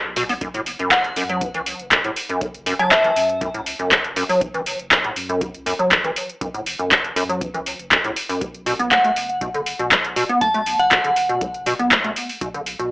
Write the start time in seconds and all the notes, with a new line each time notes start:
0.04 B1
0.16 B2, open hi-hat
0.29 B3, open hi-hat
0.41 F#1 F#2, kick, closed hi-hat
0.54 A2, closed hi-hat
0.66 open hi-hat
0.79 F#1 F#2, closed hi-hat
0.91 F#3 F#5, kick, clap, closed hi-hat
1.04 closed hi-hat
1.16 F#2, open hi-hat
1.29 F#3, closed hi-hat
1.41 E3, kick, closed hi-hat
1.54 C#2 E3, closed hi-hat
1.66 open hi-hat
1.79 F#1, closed hi-hat
1.91 F#2, kick, clap, closed hi-hat
2.04 F#1 A2, closed hi-hat
2.16 open hi-hat
2.29 F#2, closed hi-hat
2.41 F#1 F#3, kick, closed hi-hat
2.54 closed hi-hat
2.66 F#2, open hi-hat
2.79 F#1 F#3 A5, closed hi-hat
2.91 E3 E5, kick, clap, closed hi-hat
3.04 E3, closed hi-hat
3.16 F#2, open hi-hat
3.29 closed hi-hat
3.41 F#2, kick, closed hi-hat
3.54 C#2 A2, closed hi-hat
3.66 open hi-hat
3.79 F#1 F#2, closed hi-hat
3.91 F#3, kick, clap, closed hi-hat
4.04 F#1, closed hi-hat
4.16 F#2, open hi-hat
4.29 F#3, open hi-hat
4.41 F#1 E3, kick, closed hi-hat
4.54 E3, closed hi-hat
4.66 open hi-hat
4.79 F#1, closed hi-hat
4.91 F#2, kick, clap, closed hi-hat
5.04 A2, closed hi-hat
5.16 F#2, open hi-hat
5.29 F#2, closed hi-hat
5.41 F#3, kick, closed hi-hat
5.54 C#2, closed hi-hat
5.66 F#2, open hi-hat
5.79 F#1 F#3, closed hi-hat
5.91 E3, kick, clap, closed hi-hat
6.04 F#1 E3, closed hi-hat
6.16 open hi-hat
6.29 closed hi-hat
6.41 F#1 F#2, kick, closed hi-hat
6.54 A2, closed hi-hat
6.66 open hi-hat
6.79 F#1 F#2, closed hi-hat
6.91 F#3, kick, clap, closed hi-hat
7.04 closed hi-hat
7.16 F#2, open hi-hat
7.29 F#3, closed hi-hat
7.41 E3, kick, closed hi-hat
7.54 C#2 E3, closed hi-hat
7.66 open hi-hat
7.79 F#1, closed hi-hat
7.91 F#2, kick, clap, closed hi-hat
8.04 C#2 A2, closed hi-hat
8.16 open hi-hat
8.29 F#2, open hi-hat
8.41 B1 B3, kick, closed hi-hat
8.54 closed hi-hat
8.66 B2, open hi-hat
8.79 B1 B3, closed hi-hat
8.91 A3 F#5, kick, clap, closed hi-hat
9.04 A3, closed hi-hat
9.16 F#1, open hi-hat
9.29 closed hi-hat
9.41 B2, kick, closed hi-hat
9.54 F#1 D3, closed hi-hat
9.66 open hi-hat
9.79 B1 B2, closed hi-hat
9.91 B3, kick, clap, closed hi-hat
10.04 B1, closed hi-hat
10.16 B2, open hi-hat
10.29 B3, closed hi-hat
10.41 B1 A3 A5, kick, closed hi-hat
10.54 A3, closed hi-hat
10.66 open hi-hat
10.79 B1 F#5, closed hi-hat
10.91 B2, kick, clap, closed hi-hat
11.04 D3, closed hi-hat
11.16 F#1, open hi-hat
11.29 B2, closed hi-hat
11.41 B3, kick, closed hi-hat
11.54 F#1, closed hi-hat
11.66 B2, open hi-hat
11.79 B1 B3, closed hi-hat
11.91 A3, kick, clap, closed hi-hat
12.04 B1 A3, closed hi-hat
12.16 open hi-hat
12.29 open hi-hat
12.41 B1 B2, kick, closed hi-hat
12.54 D3, closed hi-hat
12.66 open hi-hat
12.79 B1 B2, closed hi-hat